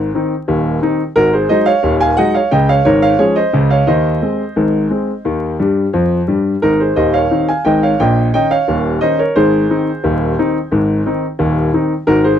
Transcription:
Already playing: G#4 C5
0.14 D#3 C4 D#4
0.48 D#1 D#2
0.82 D#3 C4 D#4
1.16 G#1 G#2 F#4 A#4
1.33 G#4 C5
1.49 F#3 G#3 D#4 C5 D#5
1.66 C#5 F5
1.83 D#1 D#2
2.00 F5 G#5
2.17 F#3 G#3 D#4 D#5 F#5
2.35 C#5 F5
2.51 C#2 C#3 D#5 G5
2.69 C#5 F5
2.85 G#1 G#2 A#4 C#5
3.02 C#5 F5
3.19 F3 G#3 C#4 G#4 C#5
3.36 C5 D#5
3.53 C#2 C#3
3.70 C#5 F5
3.87 D#2 D#3 C5 D#5
4.22 G#3 C4
4.56 G#1 G#2
4.90 G#3 C4
5.25 D#2 D#3
5.59 G2 G3
5.93 F2 F3
6.28 G2 G3
6.62 G#1 G#2 D#4 A#4
6.80 G#4 C5
6.96 D#1 D#2 C5 D#5
7.14 C#5 F5
7.31 D#3 C4 D#4
7.48 F5 G#5
7.65 G#1 G#2 D#5 G5
7.83 C#5 F5
8.00 A#1 A#2 D#5 G5
8.34 D#3 C#4 D#4 D#5 G5
8.51 C#5 F5
8.68 D#1 D#2
9.01 D#3 C#4 D#4 C5 D#5
9.19 A#4 C#5
9.36 G#1 G#2 G#4 C5
9.70 D#3 C4 D#4
10.04 D#1 D#2
10.38 D#3 C4 D#4
10.71 G#1 G#2
11.06 D#3 C4 D#4
11.39 D#1 D#2
11.73 D#3 C4 D#4
12.07 G#1 G#2 F#4 A#4
12.24 G#4 C5

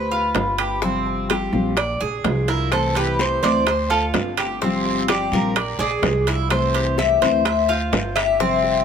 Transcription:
Already playing: D2 B4 C5
0.11 F4
0.33 G1 D3 A3 C4 F4, high bongo, low bongo, high timbale, low timbale
0.58 G4, high timbale, claves
0.82 C3 F3 G3 C4 F4, high bongo
1.07 high bongo
1.30 F3 G3 C4 F4 G4, high bongo, high timbale, low timbale, claves
1.53 A#1 F3 G3 C4 F4, high bongo
1.77 D5, muted steel-string acoustic guitar stroke, high bongo, high timbale, claves
2.01 A#1 G#4
2.24 C2 F3 G#3 D4 F4, high bongo, low bongo, high timbale, low timbale
2.48 E4 A#4, high bongo, high timbale
2.71 C3 E3 A3 C4 E4 A4 C5, high bongo, high timbale, long guiro, claves
2.95 G4 B4, high timbale
3.19 E3 A3 C4 E4 C5, high bongo, low timbale, short guiro
3.43 D2 E3 A3 C4 E4 C5 D5, high timbale, short guiro
3.66 C5, muted steel-string acoustic guitar stroke, high bongo, high timbale, long guiro, claves
3.90 F4 A4
4.14 G1 D3 A3 C4 F4, high bongo, low bongo, high timbale, low timbale, short guiro
4.37 G4, high timbale, short guiro, claves
4.61 C3 F3 G3 C4 F4, high bongo, long guiro
4.85 high bongo
5.08 F3 G3 C4 F4 G4 D5, high bongo, high timbale, low timbale, short guiro, claves
5.32 A#1 F3 G3 C4 F4 A#4, high bongo, short guiro
5.56 D5, muted steel-string acoustic guitar stroke, high bongo, high timbale, long guiro, claves
5.79 A#1 G#4 D5
6.02 C2 F3 G#3 D4 F4, high bongo, low bongo, high timbale, low timbale, short guiro
6.27 E4, high bongo, high timbale, short guiro
6.50 C3 E3 A3 C4 E4 C5, high bongo, high timbale, long guiro, claves
6.74 G4, high timbale
6.98 E3 A3 C4 E4 E5, high bongo, low timbale, short guiro
7.21 D2 E3 A3 C4 E4 C5, high timbale, short guiro
7.45 E5, muted steel-string acoustic guitar stroke, high bongo, high timbale, long guiro, claves
7.69 F4 C5
7.92 G1 D3 A3 C4 F4, high bongo, low bongo, high timbale, low timbale, short guiro
8.16 G4 E5, high timbale, short guiro, claves
8.39 C3 F3 G3 C4 F4, high bongo, long guiro
8.64 high bongo

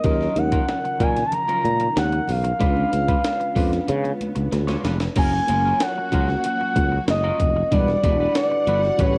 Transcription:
Already playing: D#5
0.04 D#2 C#3 D#3 F#3 C#4 D#4 F4 A#4, kick, closed hi-hat, muted conga
0.21 snare
0.35 D#2 F3 F#3 C#4 D#4 A#4 F#5, muted clean electric guitar stroke, closed hi-hat, high conga
0.52 F#3 C#4 F4 A#4, kick, closed hi-hat
0.68 muted clean electric guitar stroke, snare, closed hi-hat, muted conga
0.85 muted clean electric guitar stroke, closed hi-hat
1.00 A#2 F#3 C#4 F4 A#4 G#5, kick, closed hi-hat, low conga
1.17 muted clean electric guitar stroke, snare, closed hi-hat
1.26 A5
1.32 A#5, muted clean electric guitar stroke, closed hi-hat, muted conga, low conga
1.48 F#3 C#4 F4 A#4, closed hi-hat, muted conga
1.64 A#2, muted clean electric guitar stroke, closed hi-hat, high conga
1.80 muted clean electric guitar stroke, closed hi-hat
1.96 D#2 F#5, muted clean electric guitar stroke, snare, closed hi-hat, muted conga, high conga
2.12 muted clean electric guitar stroke, closed hi-hat
2.27 B1 F5, open hi-hat, low conga
2.44 muted clean electric guitar stroke, closed hi-hat
2.59 C#2 C#3 G#3 B3 C#4 D4 F4 B4, kick, closed hi-hat
2.77 muted conga
2.92 C#2 G#3 C#4 D4 F4 B4, muted clean electric guitar stroke, closed hi-hat, high conga
3.08 G#3 D4 F4 B4, kick, closed hi-hat
3.24 muted clean electric guitar stroke, snare, closed hi-hat, muted conga
3.40 muted clean electric guitar stroke, closed hi-hat
3.56 F2 G#3 D4 F4 B4, kick, open hi-hat, low conga
3.72 muted clean electric guitar stroke, snare, closed hi-hat
3.88 C#3, muted clean electric guitar stroke, closed hi-hat, muted conga, low conga
4.04 muted clean electric guitar stroke, closed hi-hat, muted conga
4.21 closed hi-hat, high conga
4.36 C#2, muted clean electric guitar stroke, closed hi-hat
4.52 D2, muted clean electric guitar stroke, snare, closed hi-hat, muted conga, high conga
4.68 G#3 D4 F4 C#5, snare, closed hi-hat, muted conga, high conga
4.84 F1 G#3 D4 F4 B4, snare, closed hi-hat, low conga
5.00 snare, closed hi-hat
5.16 F#1 F#3 A#3 C#4 F4 F#4 A#4 C#5 G#5, kick, closed hi-hat, crash
5.32 snare, muted conga
5.47 F#1 F#3 A#3 C#4 F4 F#4 A#4 C#5, closed hi-hat, high conga
5.65 F#3 C#4 F4 A#4
5.80 F#5, muted clean electric guitar stroke, snare, closed hi-hat
5.96 muted clean electric guitar stroke, muted conga
6.12 C#2 F#3 C#4 F4 A#4, kick, closed hi-hat, low conga
6.28 muted clean electric guitar stroke, snare
6.44 F#5, muted clean electric guitar stroke, closed hi-hat, muted conga
6.61 muted clean electric guitar stroke, muted conga
6.76 C#2, kick, closed hi-hat, high conga
6.92 muted clean electric guitar stroke
7.08 F#1 D#5, muted clean electric guitar stroke, snare, closed hi-hat, muted conga, high conga
7.24 F#3 C#4 F4 A#4, high conga
7.40 F1, muted clean electric guitar stroke, kick, closed hi-hat, low conga
7.56 muted clean electric guitar stroke
7.71 E1 D3 G3 D4 E4 F#4 B4 D5 F#5, kick, closed hi-hat, muted conga
7.88 snare, muted conga
8.03 E1 G3 D4 E4 F#4 B4, kick, closed hi-hat, high conga
8.20 G3 D4 F#4 B4
8.35 D5, muted clean electric guitar stroke, snare, closed hi-hat, muted conga
8.51 muted clean electric guitar stroke, muted conga
8.67 G1 G3 D4 F#4 B4, closed hi-hat, low conga
8.83 muted clean electric guitar stroke, snare
8.97 A1 C#3 G3 A3 B3 C#4 F#4 G4 B4 C#5, kick, closed hi-hat

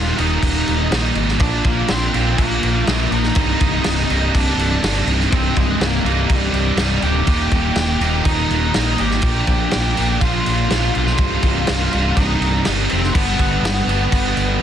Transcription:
Already playing: D#2 A#2 D#3 G3 A#3 D#4 F4 F5
0.17 D#1 D#2 A#2 D#3 G3 A#3 D#4 D#5, crash
0.42 D#1, kick, crash
0.68 D#1, crash
0.91 A#1 D#2 A#2 D#3 G3 A#3 D#4, snare, crash
1.15 G#1, crash
1.28 snare
1.39 A#1 A#2 F3 A#3 D4 F4 A#4 D5, kick, crash
1.64 A#1 A#3 A#4, kick, crash
1.88 A#1 C4 C5, snare, crash
2.14 A#1 A#2 F3 A#3 D4 F4 A#4, crash
2.38 A#1 A#3 A#4, kick, crash
2.63 A#1, crash
2.87 A#1 A#2 F3 A#3 D4 F4 G#4 A#4, snare, crash
3.11 A#1 D#4 D#5, crash
3.23 snare
3.35 C1 C2 G2 C3 G3 A#3 D#4, kick, crash
3.60 C1, kick, crash
3.84 C1, snare, crash
4.10 C1 C2 G2 C3 G3 A#3 D#4, crash
4.35 C1 D4 D5, kick, crash
4.57 C1, crash
4.83 G1 C2 G2 C3 G3 A#3 D#4, snare, crash
5.07 C1, crash
5.20 snare
5.31 C1 C2 G2 C3 G3 A#3 C4 D#4, kick, crash
5.35 C5
5.56 C1 G#3 G#4, kick, crash
5.81 C1 A#3, snare, crash
5.85 A#4
6.04 C1 C2 G2 C3 G3 A#3 D#4, crash
6.30 C1 G3, kick, crash
6.34 G4
6.52 C1, crash
6.76 C1 C2 G2 C3 G3 A#3 D#4, snare, crash
7.02 D1 G4 G5, crash
7.27 D#1 D#2 A#2 D#3 G3 A#3 D#4, kick, crash
7.51 D#1, kick, crash
7.75 D#1, snare, crash
8.00 D#1 D#2 A#2 D#3 G3 A#3 D#4, crash
8.25 D#1 D#4 D#5, kick, crash
8.50 D#1, crash
8.73 A#1 D#2 A#2 D#3 G3 A#3 D#4, snare, crash
8.98 G#1 G4 G5, crash
9.11 snare
9.22 A#1 A#2 F3 A#3 D4 F4 A#4, kick, crash
9.47 A#1, kick, crash
9.71 A#1, snare, crash
9.96 A#1 A#2 F3 A#3 D4 F4 A#4, crash
10.21 A#1 F4 F5, kick, crash
10.46 A#1, crash
10.70 A#1 A#2 F3 A#3 D4 F4 A#4, snare, crash
10.94 B1 F4 F5, crash
11.07 snare
11.18 C1 C2 G2 C3 G3 A#3 D#4, kick, crash
11.43 C1, kick, crash
11.67 C1, snare, crash
11.91 C1 C2 G2 C3 G3 A#3 D#4, crash
12.16 C1 D#4 D#5, kick, crash
12.41 C1, crash
12.65 G1 C2 G2 C3 G3 A#3 D#4, snare, crash
12.89 F1 C4 C5, crash
13.03 snare
13.14 G1 G2 D3 G3 B3 D4 G4 B4, kick, crash
13.39 G1, kick, crash
13.62 G1, snare, crash
13.86 G1 G2 D3 G3 B3 D4 G4, crash
14.12 G1, kick, crash
14.37 G1, crash

